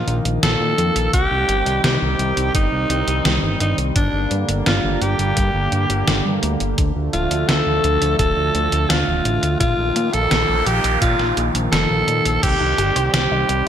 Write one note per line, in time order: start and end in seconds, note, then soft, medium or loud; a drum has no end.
0.00 1.11 D#3 medium
0.00 1.10 F3 medium
0.00 1.11 A#3 medium
0.00 0.16 F4 loud
0.08 0.22 A#1 medium
0.08 closed hi-hat medium
0.25 0.39 A#1 medium
0.25 closed hi-hat medium
0.43 0.57 A#1 loud
0.43 1.09 A4 loud
0.43 snare loud
0.43 closed hi-hat medium
0.61 0.74 A#2 medium
0.78 0.92 F2 medium
0.78 closed hi-hat medium
0.96 1.10 A#1 medium
0.96 closed hi-hat medium
1.13 1.27 C2 medium
1.13 3.93 D#3 medium
1.13 6.74 G3 medium
1.13 3.93 C4 medium
1.13 1.80 G4 loud
1.13 kick loud
1.13 closed hi-hat medium
1.31 1.45 C2 medium
1.49 1.63 G1 medium
1.49 closed hi-hat medium
1.66 1.80 C2 medium
1.66 closed hi-hat medium
1.84 1.98 C2 loud
1.84 2.51 G4 medium
1.84 snare loud
1.84 closed hi-hat medium
2.02 2.16 C2 medium
2.19 2.33 C2 medium
2.19 closed hi-hat medium
2.37 2.51 C2 medium
2.37 closed hi-hat medium
2.55 2.69 G1 loud
2.55 3.57 D#4 loud
2.55 kick loud
2.55 closed hi-hat medium
2.72 2.86 C2 medium
2.90 3.04 C2 medium
2.90 closed hi-hat medium
3.08 3.22 C2 medium
3.08 closed hi-hat medium
3.25 3.39 C2 medium
3.25 snare loud
3.25 closed hi-hat medium
3.43 3.57 G1 medium
3.60 3.75 G1 medium
3.60 3.77 D#4 medium
3.60 closed hi-hat medium
3.78 3.92 C2 medium
3.78 closed hi-hat medium
3.95 4.10 G1 loud
3.95 9.56 D3 medium
3.95 6.75 A#3 medium
3.95 4.37 D4 medium
3.95 kick loud
3.95 closed hi-hat medium
4.13 4.27 G1 medium
4.31 4.45 G2 medium
4.31 closed hi-hat medium
4.49 4.63 G1 medium
4.49 closed hi-hat medium
4.66 4.80 G1 loud
4.66 5.03 F4 medium
4.66 snare loud
4.66 closed hi-hat medium
4.84 4.98 G1 medium
5.02 5.16 G1 medium
5.02 6.43 G4 medium
5.02 closed hi-hat medium
5.19 5.33 G1 medium
5.19 closed hi-hat medium
5.37 5.51 G2 loud
5.37 kick loud
5.37 closed hi-hat medium
5.54 5.68 G1 medium
5.72 5.86 G1 medium
5.72 closed hi-hat medium
5.90 6.04 G1 medium
5.90 closed hi-hat medium
6.08 6.22 G1 loud
6.08 snare loud
6.08 closed hi-hat medium
6.25 6.39 G2 medium
6.43 6.57 D2 medium
6.43 closed hi-hat medium
6.60 6.75 G1 medium
6.60 closed hi-hat medium
6.78 6.92 D2 loud
6.78 12.39 F3 medium
6.78 9.58 A3 medium
6.78 kick loud
6.78 closed hi-hat medium
6.96 7.10 D2 medium
7.13 7.27 D1 medium
7.13 7.50 F4 medium
7.13 closed hi-hat medium
7.31 7.45 D2 medium
7.31 closed hi-hat medium
7.48 7.63 D2 loud
7.48 8.18 A4 loud
7.48 snare loud
7.48 closed hi-hat medium
7.67 7.80 D2 medium
7.84 7.98 D2 medium
7.84 closed hi-hat medium
8.02 8.16 D2 medium
8.02 closed hi-hat medium
8.19 8.33 D1 loud
8.19 8.91 A4 loud
8.19 kick loud
8.19 closed hi-hat medium
8.37 8.51 D2 medium
8.55 8.69 D2 medium
8.55 closed hi-hat medium
8.72 8.86 D2 medium
8.72 closed hi-hat medium
8.90 9.04 D2 loud
8.90 9.59 F4 loud
8.90 snare loud
8.90 closed hi-hat medium
9.08 9.22 D1 medium
9.25 9.39 A1 medium
9.25 closed hi-hat medium
9.43 9.57 D2 medium
9.43 closed hi-hat medium
9.60 9.75 A#1 loud
9.60 13.68 D#3 medium
9.60 12.40 A#3 medium
9.60 10.15 F4 loud
9.60 kick loud
9.60 closed hi-hat medium
9.60 noise sweep medium
9.78 9.92 A#1 medium
9.96 10.10 A#2 medium
9.96 closed hi-hat medium
10.13 10.27 A#1 medium
10.13 10.68 A4 loud
10.13 closed hi-hat medium
10.31 10.45 A#1 loud
10.31 snare loud
10.31 closed hi-hat medium
10.49 10.63 A#1 medium
10.66 10.80 A#1 medium
10.66 11.01 G4 medium
10.66 closed hi-hat medium
10.84 10.98 A#1 medium
10.84 closed hi-hat medium
11.02 11.16 A#2 loud
11.02 11.42 F4 loud
11.02 kick loud
11.02 closed hi-hat medium
11.19 11.33 A#1 medium
11.19 snare soft
11.37 11.51 A#1 medium
11.37 closed hi-hat medium
11.55 11.69 A#1 medium
11.55 closed hi-hat medium
11.72 11.86 F1 loud
11.72 12.44 A4 loud
11.72 snare loud
11.72 closed hi-hat medium
11.90 12.04 A#1 medium
12.08 12.22 A#2 medium
12.08 closed hi-hat medium
12.25 12.39 A#1 medium
12.25 closed hi-hat medium
12.43 12.57 C2 medium
12.43 13.68 G3 medium
12.43 12.57 C4 medium
12.43 13.68 C4 medium
12.43 13.13 G4 loud
12.43 kick loud
12.43 closed hi-hat medium
12.43 crash medium
12.61 12.75 C2 medium
12.61 12.74 D#4 medium
12.78 12.92 G1 medium
12.78 12.87 G4 loud
12.78 closed hi-hat medium
12.96 13.10 C2 medium
12.96 13.10 C5 medium
12.96 closed hi-hat medium
13.13 13.28 C2 medium
13.13 13.27 C4 medium
13.13 13.68 G4 medium
13.13 snare loud
13.13 closed hi-hat medium
13.31 13.45 C2 medium
13.31 13.48 D#4 medium
13.49 13.63 C2 medium
13.49 13.63 C4 medium
13.49 closed hi-hat medium